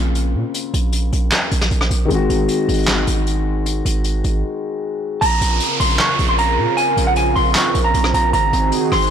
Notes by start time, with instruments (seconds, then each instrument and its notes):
Already playing: 808-style bass A#1, grand piano C#3 A#3 C4 F4
0.15 closed hi-hat
0.35 808-style bass A#2
0.54 closed hi-hat
0.74 808-style bass A#1, closed hi-hat
0.93 closed hi-hat
1.13 808-style bass A#1, closed hi-hat
1.32 snare, clap
1.51 808-style bass A#1, closed hi-hat
1.61 snare
1.71 808-style bass A#1, closed hi-hat
1.81 cross-stick
1.91 808-style bass A#1, closed hi-hat
2.05 grand piano D#3 G#3
2.10 808-style bass G#1, grand piano C4, closed hi-hat
2.14 grand piano F#4
2.30 808-style bass G#1, closed hi-hat
2.48 closed hi-hat
2.69 808-style bass G#1, closed hi-hat
2.73 closed hi-hat
2.78 closed hi-hat
2.83 closed hi-hat
2.88 snare, clap
3.07 808-style bass G#1, closed hi-hat
3.27 closed hi-hat
3.66 closed hi-hat
3.85 808-style bass G#1, closed hi-hat
4.04 closed hi-hat
4.24 808-style bass G#1, closed hi-hat
5.21 808-style bass A#1, analog synth pad C#3 C4 F4 A#4, clean electric guitar A#5, closed hi-hat, downlifter
5.41 808-style bass A#1, closed hi-hat
5.60 closed hi-hat
5.80 808-style bass A#1, clean electric guitar C6, closed hi-hat
5.85 closed hi-hat
5.90 closed hi-hat
5.95 closed hi-hat
5.99 clean electric guitar C#6, snare, clap
6.19 808-style bass A#1, closed hi-hat
6.29 clean electric guitar C6
6.38 clean electric guitar A#5, closed hi-hat
6.58 808-style bass A#2
6.77 clean electric guitar G#5, closed hi-hat
6.97 808-style bass A#1, closed hi-hat
7.07 clean electric guitar F#5
7.16 clean electric guitar G#5, closed hi-hat
7.36 808-style bass A#1, clean electric guitar C6, open hi-hat
7.55 clean electric guitar C#6, snare, clap, hi-hat pedal
7.75 808-style bass A#1, closed hi-hat
7.84 clean electric guitar A#5
7.94 808-style bass A#1, closed hi-hat
8.04 cross-stick
8.14 808-style bass A#1, clean electric guitar A#5, closed hi-hat
8.33 808-style bass G#1, analog synth pad D#3 F#4 G#4, clean electric guitar A#5, closed hi-hat
8.53 808-style bass G#1, closed hi-hat
8.72 closed hi-hat
8.92 808-style bass G#1, clean electric guitar C6, cross-stick, closed hi-hat
8.97 closed hi-hat
9.02 closed hi-hat
9.07 closed hi-hat